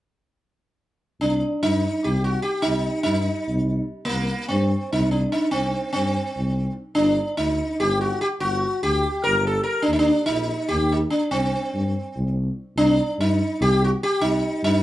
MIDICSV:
0, 0, Header, 1, 3, 480
1, 0, Start_track
1, 0, Key_signature, -3, "minor"
1, 0, Tempo, 412655
1, 1409, Time_signature, 7, 3, 24, 8
1, 17249, End_track
2, 0, Start_track
2, 0, Title_t, "Sitar"
2, 0, Program_c, 0, 104
2, 1407, Note_on_c, 0, 62, 77
2, 1862, Note_off_c, 0, 62, 0
2, 1892, Note_on_c, 0, 63, 82
2, 2376, Note_on_c, 0, 67, 68
2, 2397, Note_off_c, 0, 63, 0
2, 2603, Note_off_c, 0, 67, 0
2, 2608, Note_on_c, 0, 66, 64
2, 2814, Note_off_c, 0, 66, 0
2, 2819, Note_on_c, 0, 67, 80
2, 3046, Note_off_c, 0, 67, 0
2, 3049, Note_on_c, 0, 63, 92
2, 3514, Note_off_c, 0, 63, 0
2, 3528, Note_on_c, 0, 63, 88
2, 4462, Note_off_c, 0, 63, 0
2, 4710, Note_on_c, 0, 58, 82
2, 5186, Note_off_c, 0, 58, 0
2, 5217, Note_on_c, 0, 60, 69
2, 5724, Note_off_c, 0, 60, 0
2, 5729, Note_on_c, 0, 63, 79
2, 5942, Note_off_c, 0, 63, 0
2, 5946, Note_on_c, 0, 62, 53
2, 6185, Note_off_c, 0, 62, 0
2, 6189, Note_on_c, 0, 63, 71
2, 6407, Note_off_c, 0, 63, 0
2, 6412, Note_on_c, 0, 60, 77
2, 6879, Note_off_c, 0, 60, 0
2, 6893, Note_on_c, 0, 60, 72
2, 7825, Note_off_c, 0, 60, 0
2, 8083, Note_on_c, 0, 62, 87
2, 8571, Note_off_c, 0, 62, 0
2, 8576, Note_on_c, 0, 63, 81
2, 9071, Note_on_c, 0, 67, 87
2, 9095, Note_off_c, 0, 63, 0
2, 9311, Note_off_c, 0, 67, 0
2, 9316, Note_on_c, 0, 66, 65
2, 9545, Note_off_c, 0, 66, 0
2, 9550, Note_on_c, 0, 67, 80
2, 9614, Note_off_c, 0, 67, 0
2, 9776, Note_on_c, 0, 66, 88
2, 10266, Note_off_c, 0, 66, 0
2, 10271, Note_on_c, 0, 67, 91
2, 10743, Note_on_c, 0, 70, 98
2, 10785, Note_off_c, 0, 67, 0
2, 11010, Note_off_c, 0, 70, 0
2, 11015, Note_on_c, 0, 69, 73
2, 11202, Note_off_c, 0, 69, 0
2, 11207, Note_on_c, 0, 70, 78
2, 11426, Note_on_c, 0, 62, 91
2, 11439, Note_off_c, 0, 70, 0
2, 11543, Note_off_c, 0, 62, 0
2, 11548, Note_on_c, 0, 63, 80
2, 11615, Note_off_c, 0, 63, 0
2, 11619, Note_on_c, 0, 62, 83
2, 11929, Note_off_c, 0, 62, 0
2, 11933, Note_on_c, 0, 63, 100
2, 12429, Note_on_c, 0, 67, 87
2, 12460, Note_off_c, 0, 63, 0
2, 12702, Note_off_c, 0, 67, 0
2, 12705, Note_on_c, 0, 63, 53
2, 12768, Note_off_c, 0, 63, 0
2, 12916, Note_on_c, 0, 62, 69
2, 13152, Note_off_c, 0, 62, 0
2, 13157, Note_on_c, 0, 60, 83
2, 14346, Note_off_c, 0, 60, 0
2, 14860, Note_on_c, 0, 62, 96
2, 15313, Note_off_c, 0, 62, 0
2, 15360, Note_on_c, 0, 63, 78
2, 15839, Note_on_c, 0, 67, 90
2, 15858, Note_off_c, 0, 63, 0
2, 16092, Note_off_c, 0, 67, 0
2, 16102, Note_on_c, 0, 66, 66
2, 16161, Note_off_c, 0, 66, 0
2, 16323, Note_on_c, 0, 67, 89
2, 16527, Note_off_c, 0, 67, 0
2, 16533, Note_on_c, 0, 63, 84
2, 17019, Note_off_c, 0, 63, 0
2, 17032, Note_on_c, 0, 63, 94
2, 17249, Note_off_c, 0, 63, 0
2, 17249, End_track
3, 0, Start_track
3, 0, Title_t, "Tuba"
3, 0, Program_c, 1, 58
3, 1394, Note_on_c, 1, 36, 63
3, 1667, Note_off_c, 1, 36, 0
3, 1898, Note_on_c, 1, 43, 76
3, 2166, Note_off_c, 1, 43, 0
3, 2387, Note_on_c, 1, 36, 92
3, 2769, Note_off_c, 1, 36, 0
3, 3081, Note_on_c, 1, 36, 67
3, 3350, Note_off_c, 1, 36, 0
3, 3551, Note_on_c, 1, 43, 82
3, 3825, Note_off_c, 1, 43, 0
3, 4046, Note_on_c, 1, 36, 79
3, 4433, Note_off_c, 1, 36, 0
3, 4752, Note_on_c, 1, 36, 65
3, 5022, Note_off_c, 1, 36, 0
3, 5242, Note_on_c, 1, 43, 90
3, 5512, Note_off_c, 1, 43, 0
3, 5730, Note_on_c, 1, 36, 89
3, 6115, Note_off_c, 1, 36, 0
3, 6437, Note_on_c, 1, 36, 57
3, 6705, Note_off_c, 1, 36, 0
3, 6922, Note_on_c, 1, 43, 70
3, 7191, Note_off_c, 1, 43, 0
3, 7405, Note_on_c, 1, 36, 74
3, 7792, Note_off_c, 1, 36, 0
3, 8096, Note_on_c, 1, 31, 70
3, 8370, Note_off_c, 1, 31, 0
3, 8584, Note_on_c, 1, 38, 66
3, 8859, Note_off_c, 1, 38, 0
3, 9078, Note_on_c, 1, 31, 82
3, 9468, Note_off_c, 1, 31, 0
3, 9783, Note_on_c, 1, 31, 71
3, 10056, Note_off_c, 1, 31, 0
3, 10278, Note_on_c, 1, 38, 80
3, 10551, Note_off_c, 1, 38, 0
3, 10763, Note_on_c, 1, 31, 90
3, 11153, Note_off_c, 1, 31, 0
3, 11478, Note_on_c, 1, 39, 71
3, 11749, Note_off_c, 1, 39, 0
3, 11965, Note_on_c, 1, 34, 68
3, 12238, Note_off_c, 1, 34, 0
3, 12455, Note_on_c, 1, 39, 86
3, 12844, Note_off_c, 1, 39, 0
3, 13160, Note_on_c, 1, 36, 70
3, 13432, Note_off_c, 1, 36, 0
3, 13655, Note_on_c, 1, 43, 78
3, 13926, Note_off_c, 1, 43, 0
3, 14148, Note_on_c, 1, 36, 85
3, 14534, Note_off_c, 1, 36, 0
3, 14847, Note_on_c, 1, 36, 83
3, 15119, Note_off_c, 1, 36, 0
3, 15339, Note_on_c, 1, 43, 85
3, 15610, Note_off_c, 1, 43, 0
3, 15826, Note_on_c, 1, 36, 107
3, 16214, Note_off_c, 1, 36, 0
3, 16532, Note_on_c, 1, 36, 70
3, 16803, Note_off_c, 1, 36, 0
3, 17013, Note_on_c, 1, 43, 91
3, 17249, Note_off_c, 1, 43, 0
3, 17249, End_track
0, 0, End_of_file